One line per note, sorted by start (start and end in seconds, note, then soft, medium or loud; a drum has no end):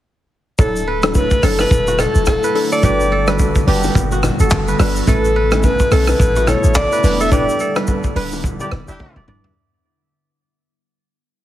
0.58 1.28 D1 loud
0.58 5.03 D3 medium
0.58 0.81 F#3 medium
0.58 2.81 F#3 medium
0.58 2.81 A3 medium
0.58 0.81 D4 medium
0.58 0.81 E4 medium
0.58 2.81 E4 medium
0.58 0.81 A4 loud
0.58 1.43 A4 loud
0.58 1.17 A4 medium
0.58 kick loud
0.58 low conga medium
0.58 shaker medium
0.76 shaker soft
0.87 2.10 B4 medium
1.03 1.23 F#3 medium
1.03 1.23 D4 medium
1.03 1.23 E4 medium
1.03 1.23 A4 medium
1.03 cross-stick loud
1.03 low bongo medium
1.03 shaker soft
1.14 1.45 B4 medium
1.14 kick medium
1.14 high bongo medium
1.14 shaker medium
1.31 kick medium
1.31 shaker medium
1.43 1.65 F#1 loud
1.43 1.65 F#3 medium
1.43 1.65 D4 medium
1.43 1.65 E4 medium
1.43 1.65 A4 medium
1.43 1.99 A4 medium
1.43 1.60 A4 medium
1.43 cross-stick medium
1.43 open hi-hat medium
1.43 shaker medium
1.59 2.02 B4 loud
1.59 cross-stick medium
1.59 high bongo medium
1.59 low bongo medium
1.59 shaker medium
1.71 2.06 E1 loud
1.71 kick loud
1.71 hi-hat pedal medium
1.71 low conga medium
1.71 shaker medium
1.87 2.90 F#4 medium
1.87 high bongo medium
1.87 shaker soft
1.99 2.72 A4 medium
1.99 2.28 A4 medium
1.99 cross-stick loud
1.99 low bongo medium
1.99 low conga medium
1.99 shaker medium
2.15 2.37 E1 loud
2.15 shaker medium
2.26 2.69 A4 medium
2.26 kick medium
2.26 cross-stick medium
2.26 high bongo medium
2.26 shaker medium
2.43 3.28 B4 medium
2.43 shaker medium
2.55 2.81 F#3 medium
2.55 2.81 D4 medium
2.55 2.81 E4 medium
2.55 2.81 A4 medium
2.55 open hi-hat medium
2.72 3.11 A4 medium
2.72 2.83 D5 loud
2.72 shaker medium
2.83 3.52 G1 loud
2.83 3.05 G3 medium
2.83 5.05 G3 medium
2.83 5.05 B3 medium
2.83 3.05 D4 medium
2.83 5.05 F#4 loud
2.83 3.05 F#4 medium
2.83 3.67 G4 medium
2.83 3.05 B4 loud
2.83 3.36 D5 loud
2.83 kick loud
2.83 hi-hat pedal medium
2.83 low conga medium
2.83 shaker medium
3.00 shaker soft
3.12 4.40 A4 medium
3.27 3.47 G3 medium
3.27 3.47 D4 medium
3.27 3.47 F#4 medium
3.27 3.48 B4 medium
3.27 4.51 B4 medium
3.27 cross-stick loud
3.27 low bongo medium
3.27 shaker soft
3.39 kick medium
3.39 high bongo medium
3.39 shaker medium
3.55 kick medium
3.55 shaker medium
3.67 3.89 F#1 loud
3.67 3.89 G3 medium
3.67 3.89 D4 medium
3.67 3.89 F#4 medium
3.67 4.18 G4 medium
3.67 3.90 B4 medium
3.67 open hi-hat medium
3.83 high bongo medium
3.83 low bongo medium
3.83 shaker medium
3.95 4.30 G1 loud
3.95 kick loud
3.95 hi-hat pedal medium
3.95 low conga medium
3.95 shaker medium
4.12 5.58 F#4 medium
4.12 high bongo medium
4.12 shaker soft
4.23 cross-stick medium
4.23 low bongo medium
4.23 low conga medium
4.23 shaker medium
4.39 4.49 G1 medium
4.39 5.08 A4 medium
4.39 shaker medium
4.50 4.73 F#1 medium
4.50 kick medium
4.50 clap medium
4.50 high bongo medium
4.50 shaker medium
4.68 4.80 B4 medium
4.68 shaker medium
4.79 5.01 G1 loud
4.79 5.05 G3 medium
4.79 5.06 D4 medium
4.79 5.06 F#4 medium
4.79 5.06 B4 medium
4.79 5.36 B4 medium
4.79 cross-stick loud
4.79 open hi-hat medium
4.79 shaker medium
4.96 shaker medium
5.07 5.76 A1 loud
5.07 7.02 C#3 medium
5.07 5.29 A3 loud
5.07 7.02 A3 medium
5.07 9.52 B3 medium
5.07 5.30 C#4 medium
5.07 9.52 E4 medium
5.07 5.30 E4 medium
5.07 5.92 A4 loud
5.07 5.66 A4 medium
5.07 5.30 B4 loud
5.07 kick loud
5.07 hi-hat pedal medium
5.07 low conga medium
5.07 shaker medium
5.25 shaker soft
5.36 6.59 B4 medium
5.51 5.72 A3 medium
5.51 5.72 C#4 medium
5.51 5.72 E4 medium
5.51 5.72 B4 medium
5.51 cross-stick loud
5.51 low bongo medium
5.51 shaker soft
5.63 5.94 B4 loud
5.63 kick medium
5.63 high bongo medium
5.63 shaker medium
5.79 kick medium
5.79 shaker medium
5.91 6.13 B1 medium
5.91 6.14 A3 medium
5.91 6.14 C#4 medium
5.91 6.14 E4 medium
5.91 6.48 A4 medium
5.91 6.10 A4 medium
5.91 6.14 B4 medium
5.91 cross-stick medium
5.91 open hi-hat medium
5.91 shaker medium
6.07 6.50 B4 loud
6.07 cross-stick medium
6.07 high bongo medium
6.07 low bongo medium
6.07 shaker medium
6.20 6.54 A1 loud
6.20 kick loud
6.20 hi-hat pedal medium
6.20 low conga medium
6.20 shaker medium
6.36 7.38 F#4 medium
6.36 high bongo medium
6.36 shaker soft
6.47 7.20 A4 medium
6.47 6.76 C#5 loud
6.47 cross-stick loud
6.47 low bongo medium
6.47 low conga medium
6.47 shaker medium
6.64 6.86 A1 medium
6.64 shaker medium
6.74 7.22 D5 loud
6.74 kick medium
6.74 cross-stick medium
6.74 clap loud
6.74 high bongo medium
6.74 shaker medium
6.92 7.76 B4 medium
6.92 shaker medium
7.03 7.47 E1 loud
7.03 9.53 D3 medium
7.03 7.30 G3 medium
7.03 9.54 G3 medium
7.03 7.30 D4 medium
7.03 7.30 E4 medium
7.03 7.30 B4 medium
7.03 open hi-hat medium
7.03 shaker medium
7.20 7.60 A4 medium
7.20 7.32 E5 loud
7.20 shaker medium
7.31 7.54 G3 loud
7.31 7.54 D4 medium
7.31 7.54 E4 medium
7.31 8.73 G4 medium
7.31 7.54 B4 loud
7.31 7.84 D5 loud
7.31 kick loud
7.31 hi-hat pedal medium
7.31 low conga medium
7.31 shaker medium
7.49 shaker soft
7.59 8.92 A4 medium
7.59 shaker soft
7.76 7.96 G3 medium
7.76 7.96 D4 medium
7.76 7.96 E4 medium
7.76 7.96 B4 medium
7.76 8.16 B4 medium
7.76 cross-stick loud
7.76 low bongo medium
7.76 shaker soft
7.87 kick medium
7.87 high bongo medium
7.87 shaker medium
8.04 kick medium
8.04 shaker medium
8.16 8.60 D1 loud
8.16 8.38 G3 medium
8.16 8.38 D4 medium
8.16 8.38 E4 medium
8.16 8.38 B4 medium
8.16 9.39 B4 medium
8.16 open hi-hat medium
8.32 high bongo medium
8.32 low bongo medium
8.32 shaker medium
8.44 kick loud
8.44 hi-hat pedal medium
8.44 low conga medium
8.44 shaker medium
8.60 8.70 G3 medium
8.60 8.70 D4 medium
8.60 8.70 E4 medium
8.60 8.70 G4 medium
8.60 9.16 D5 medium
8.60 high bongo medium
8.60 shaker soft
8.72 8.85 E1 medium
8.72 cross-stick medium
8.72 low bongo medium
8.72 low conga medium
8.88 8.97 E1 medium
8.88 9.22 G3 loud
8.88 9.22 D4 loud
8.88 9.22 E4 loud
8.88 9.22 G4 loud
8.88 9.92 E5 medium
8.88 shaker medium
9.00 kick medium
9.00 high tom medium
9.00 high bongo medium
9.16 9.25 D1 medium
9.16 9.28 D5 medium
9.16 mid tom medium
9.28 9.41 D1 medium
9.28 9.54 G3 medium
9.28 9.54 D4 medium
9.28 9.54 E4 medium
9.28 9.54 B4 medium
9.28 10.39 D5 medium
9.28 mid tom loud
9.44 floor tom medium